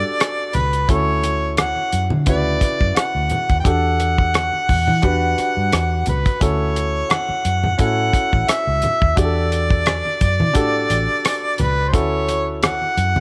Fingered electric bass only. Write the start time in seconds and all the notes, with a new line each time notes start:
0.55 C#2
0.89 D2
1.93 F#2
2.11 D3
2.27 D2
2.81 F#2
2.96 muted fingered electric bass stroke
3.15 D2
3.50 D#2
3.65 E2
4.69 E2
4.88 E3
5.03 E2
5.38 muted fingered electric bass stroke
5.57 G2
5.73 E2
6.07 C#2
6.41 D2
7.29 muted fingered electric bass stroke
7.45 F#2
7.79 A2
8.33 A1
8.67 C#2
9.02 D#2
9.17 E2
10.22 F#2
10.40 E3
10.55 A2
10.90 A1
11.60 C#2
11.94 D2
12.97 F#2
13.16 D3